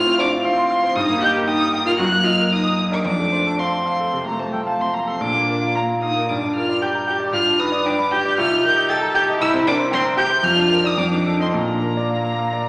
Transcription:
0.00 0.97 A2 medium
0.00 0.06 C4 medium
0.00 0.18 F4 loud
0.00 0.32 F4 medium
0.00 0.18 C5 medium
0.00 0.45 F5 medium
0.00 0.57 C6 medium
0.00 0.19 F6 loud
0.06 0.27 C4 medium
0.18 0.26 D4 loud
0.18 0.39 C5 medium
0.18 0.28 D6 loud
0.32 0.52 F4 medium
0.44 0.94 C4 medium
0.44 0.65 F5 medium
0.44 0.98 C6 loud
0.57 0.78 C6 medium
0.70 0.90 F5 medium
0.83 0.96 C5 medium
0.96 1.95 G2 medium
0.96 1.21 D#4 loud
0.96 1.21 D#6 loud
1.09 1.29 A#3 medium
1.21 1.46 G4 loud
1.21 1.42 D#5 medium
1.21 1.29 G6 loud
1.35 1.55 A#4 medium
1.47 1.84 D#4 loud
1.47 1.67 G5 medium
1.47 1.84 D#6 loud
1.60 1.80 D#6 medium
1.73 1.93 G5 medium
1.85 1.97 F4 loud
1.85 1.98 A#4 medium
1.85 1.91 F6 loud
1.97 3.02 F#2 medium
1.97 2.05 F#4 loud
1.97 2.26 F#6 loud
2.11 2.32 A#3 medium
2.23 2.31 F4 medium
2.23 2.45 D#5 medium
2.23 2.51 F6 loud
2.38 2.59 A#4 medium
2.50 2.90 D#4 medium
2.50 2.72 D#5 medium
2.50 2.91 D#6 loud
2.65 2.86 D#6 medium
2.78 2.99 D#5 medium
2.90 2.96 D4 medium
2.90 3.05 A#4 medium
2.90 2.98 D6 loud
3.04 4.09 F2 medium
3.04 3.60 D4 medium
3.04 3.61 D6 loud
3.19 3.40 A3 soft
3.32 3.53 C5 medium
3.46 3.67 A4 medium
3.59 4.27 C4 medium
3.59 3.80 F5 soft
3.59 4.26 C6 medium
3.73 3.94 C6 medium
3.86 4.07 F5 medium
4.00 4.21 A4 medium
4.13 4.34 C3 soft
4.25 4.47 A3 medium
4.25 4.37 A#3 medium
4.25 4.41 A#5 medium
4.38 4.44 A3 medium
4.38 4.61 C5 medium
4.38 4.52 A5 medium
4.52 4.64 G3 medium
4.52 4.75 A4 soft
4.52 4.65 G5 medium
4.64 4.70 A3 medium
4.64 4.88 F5 medium
4.64 4.82 A5 medium
4.79 4.92 C4 medium
4.79 5.02 C6 soft
4.79 4.96 C6 medium
4.92 4.98 A#3 medium
4.92 5.16 F5 soft
4.92 5.10 A#5 medium
5.07 5.21 C4 medium
5.07 5.21 A4 medium
5.07 5.23 C6 medium
5.20 6.26 A#2 medium
5.20 5.76 D4 medium
5.20 5.75 D6 loud
5.34 5.56 A#3 medium
5.48 5.70 A#4 medium
5.62 5.84 F4 medium
5.75 6.02 A#3 medium
5.75 5.97 F5 medium
5.75 5.84 A#5 medium
5.89 6.11 A#5 medium
6.02 6.29 D#4 medium
6.02 6.24 F5 medium
6.02 6.31 D#6 medium
6.16 6.30 A#4 medium
6.29 7.31 G2 medium
6.29 6.56 D4 medium
6.29 6.55 D6 medium
6.43 6.64 D4 soft
6.56 6.81 F4 medium
6.56 6.77 A#4 medium
6.56 6.83 F6 loud
6.69 6.90 D5 medium
6.82 6.90 G4 medium
6.82 7.03 G5 medium
6.82 7.07 G6 medium
6.95 7.15 A#5 medium
7.07 7.35 G4 medium
7.07 7.28 G5 medium
7.07 7.15 G6 medium
7.20 7.33 D5 medium
7.33 8.34 G2 medium
7.33 7.59 F4 loud
7.33 7.61 F6 loud
7.46 7.67 D4 medium
7.59 7.68 D#4 medium
7.59 7.80 B4 medium
7.59 7.87 D#6 loud
7.72 7.93 D5 medium
7.86 7.94 D4 loud
7.86 8.07 G5 medium
7.86 8.13 D6 loud
7.99 8.19 B5 medium
8.11 8.39 G4 loud
8.11 8.33 G5 medium
8.11 8.37 G6 loud
8.25 8.38 D5 medium
8.38 9.38 C2 medium
8.38 8.66 F4 loud
8.38 8.63 F6 loud
8.51 8.72 D#4 medium
8.64 8.91 G4 loud
8.64 8.85 A#4 medium
8.64 8.89 G6 loud
8.76 8.97 D#5 medium
8.89 9.16 A4 loud
8.89 9.10 G5 medium
8.89 8.98 A6 loud
9.02 9.23 A#5 medium
9.14 9.40 G4 loud
9.14 9.36 G5 medium
9.14 9.23 G6 loud
9.28 9.41 D#5 medium
9.41 10.41 C2 medium
9.41 9.66 E4 loud
9.41 9.49 E6 loud
9.54 9.74 C4 medium
9.67 9.75 D4 loud
9.67 9.87 A#4 medium
9.67 9.75 D6 loud
9.79 9.99 C5 medium
9.91 10.17 C4 loud
9.91 10.12 G5 medium
9.91 10.01 C6 loud
10.04 10.25 A#5 medium
10.17 10.25 G4 loud
10.17 10.38 G5 medium
10.17 10.45 G6 loud
10.30 10.44 C5 medium
10.43 10.96 F2 medium
10.43 10.82 F4 loud
10.43 10.88 F6 loud
10.56 10.79 D4 medium
10.70 10.93 A#4 medium
10.82 10.97 D#4 medium
10.82 10.98 D5 medium
10.82 11.00 D#6 loud
10.97 11.52 F2 medium
10.97 11.41 D4 loud
10.97 11.40 D6 loud
11.12 11.35 D#4 medium
11.26 11.49 A4 medium
11.40 11.55 C4 medium
11.40 11.54 D#5 medium
11.40 11.47 C6 medium
11.54 12.64 A#2 medium
11.54 12.69 A#3 medium
11.54 12.69 A#5 medium
11.68 11.91 D4 medium
11.82 12.05 A#4 medium
11.97 12.20 D5 medium
12.10 12.33 F5 soft
12.24 12.48 A#5 medium
12.39 12.62 F5 medium
12.53 12.69 D5 medium

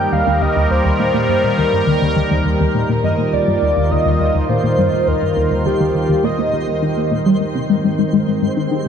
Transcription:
0.00 8.88 D#3 medium
0.00 7.41 G3 medium
0.00 8.88 A#3 medium
0.00 2.88 G4 medium
0.00 7.41 A#4 medium
0.00 8.88 C5 medium
0.00 0.14 G5 loud
0.12 0.22 D#2 loud
0.12 0.43 F5 loud
0.27 0.40 D#2 loud
0.42 0.48 D#2 loud
0.42 0.72 D#5 loud
0.56 0.66 D#2 loud
0.71 0.81 D#2 medium
0.71 1.58 C5 loud
0.85 0.91 D#2 medium
1.00 1.10 A#2 loud
1.14 1.28 A#2 loud
1.29 1.39 G2 loud
1.43 1.53 A#2 medium
1.58 1.64 D#2 medium
1.58 2.12 A#4 medium
1.73 1.83 G2 medium
1.87 1.97 D#2 loud
2.02 2.15 D#2 loud
2.16 2.22 D#2 loud
2.31 2.41 D#2 loud
2.46 2.55 D#2 medium
2.60 2.66 D#2 loud
2.70 7.41 F4 medium
2.75 2.85 A#2 loud
2.89 3.03 A#2 loud
3.04 3.14 G2 loud
3.04 3.35 D#5 loud
3.18 3.28 A#2 medium
3.33 3.39 D#2 medium
3.33 3.93 D5 loud
3.47 3.57 G2 medium
3.62 3.72 D#2 loud
3.77 3.90 D#2 loud
3.91 3.97 D#2 loud
3.91 4.49 D#5 loud
4.06 4.16 D#2 loud
4.20 4.30 D#2 medium
4.35 4.41 D#2 loud
4.49 4.59 A#2 loud
4.49 5.09 C5 loud
4.64 4.78 A#2 loud
4.78 4.88 G2 loud
4.93 5.03 A#2 medium
5.08 5.14 D#2 medium
5.08 5.68 A#4 loud
5.22 5.32 G2 medium
5.37 5.47 D#2 loud
5.51 5.65 D#2 loud
5.66 5.72 D#2 loud
5.66 6.26 G4 medium
5.80 5.90 D#2 loud
5.95 6.05 D#2 medium
6.09 6.15 D#2 loud
6.24 6.34 A#2 loud
6.24 7.12 D#5 medium
6.39 6.53 A#2 loud
6.53 6.63 D#2 medium
6.68 6.78 D#2 medium
6.82 6.92 D#3 medium
6.97 7.11 A#3 medium
7.11 7.21 A#2 medium
7.26 7.36 G3 loud
7.40 7.47 G#2 medium
7.55 7.65 C3 medium
7.60 8.88 C4 medium
7.70 7.80 G#2 loud
7.80 8.88 G#3 medium
7.84 7.98 G#2 loud
7.99 8.05 G#2 loud
8.13 8.23 G#2 loud
8.28 8.38 G#2 medium
8.39 8.48 G#2 loud
8.39 8.88 C5 medium
8.57 8.67 D#3 loud
8.57 8.88 G4 medium
8.72 8.85 D#3 loud

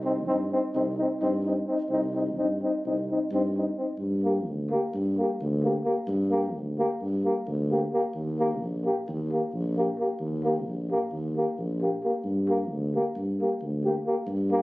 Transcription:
0.00 0.28 C2 medium
0.00 0.13 C4 medium
0.05 0.14 D#4 medium
0.27 0.53 G2 medium
0.27 0.37 C4 medium
0.27 0.38 D#4 medium
0.52 0.61 C4 medium
0.52 0.62 D#4 medium
0.73 1.01 C2 loud
0.73 0.84 C4 medium
0.73 0.83 D#4 medium
0.97 1.09 C4 medium
0.97 1.07 D#4 medium
1.20 1.59 G2 loud
1.20 1.31 C4 medium
1.20 1.30 D#4 medium
1.45 1.56 C4 medium
1.45 1.54 D#4 medium
1.67 1.76 C4 medium
1.67 1.78 D#4 medium
1.89 2.38 C2 medium
1.89 1.99 C4 medium
1.89 2.01 D#4 medium
2.15 2.24 C4 medium
2.15 2.24 D#4 medium
2.37 2.63 G2 medium
2.37 2.47 C4 medium
2.37 2.47 D#4 medium
2.62 2.71 C4 medium
2.62 2.72 D#4 medium
2.85 3.11 C2 medium
2.85 2.96 C4 soft
2.85 2.95 D#4 medium
3.11 3.20 C4 soft
3.11 3.19 D#4 medium
3.31 3.69 G2 loud
3.31 3.43 C4 medium
3.31 3.42 D#4 medium
3.57 3.65 C4 soft
3.57 3.66 D#4 medium
3.77 3.86 C4 medium
3.77 3.88 D#4 soft
3.98 4.48 G2 medium
4.23 4.32 A#3 medium
4.23 4.35 G4 medium
4.47 4.72 D2 medium
4.70 4.79 A#3 medium
4.70 4.82 G4 medium
4.94 5.20 G2 loud
5.18 5.27 A#3 medium
5.18 5.29 G4 medium
5.41 5.78 D2 loud
5.63 5.72 A#3 medium
5.63 5.73 G4 medium
5.84 5.93 A#3 medium
5.84 5.95 G4 medium
6.08 6.56 G2 loud
6.31 6.40 A#3 medium
6.31 6.41 G4 medium
6.55 6.80 D2 medium
6.78 6.87 A#3 medium
6.78 6.88 G4 medium
7.01 7.27 G2 loud
7.24 7.34 A#3 medium
7.24 7.33 G4 medium
7.47 7.84 D2 loud
7.71 7.79 A#3 medium
7.71 7.80 G4 medium
7.93 8.02 A#3 medium
7.93 8.02 G4 medium
8.14 8.62 D#2 loud
8.39 8.47 A#3 medium
8.39 8.48 G4 medium
8.61 8.86 A#1 medium
8.84 8.93 A#3 medium
8.84 8.94 G4 medium
9.08 9.33 D#2 loud
9.32 9.41 A#3 medium
9.32 9.40 G4 medium
9.54 9.90 A#1 loud
9.77 9.85 A#3 medium
9.77 9.87 G4 medium
9.98 10.07 A#3 medium
9.98 10.09 G4 medium
10.20 10.67 D#2 loud
10.44 10.52 A#3 medium
10.44 10.55 G4 medium
10.66 10.91 A#1 medium
10.90 10.99 A#3 medium
10.90 10.99 G4 medium
11.12 11.37 D#2 medium
11.37 11.45 A#3 medium
11.37 11.46 G4 medium
11.58 11.95 A#1 medium
11.81 11.90 A#3 soft
11.81 11.90 G4 medium
12.03 12.12 A#3 medium
12.03 12.11 G4 medium
12.24 12.72 G2 medium
12.48 12.57 A#3 medium
12.48 12.57 G4 medium
12.70 12.96 D2 medium
12.95 13.03 A#3 medium
12.95 13.03 G4 medium
13.15 13.41 G2 medium
13.40 13.49 A#3 medium
13.40 13.50 G4 medium
13.62 13.98 D2 medium
13.84 13.94 A#3 medium
13.84 13.93 G4 medium
14.06 14.15 A#3 medium
14.06 14.15 G4 medium
14.26 14.62 G2 loud
14.51 14.60 A#3 medium
14.51 14.60 G4 medium

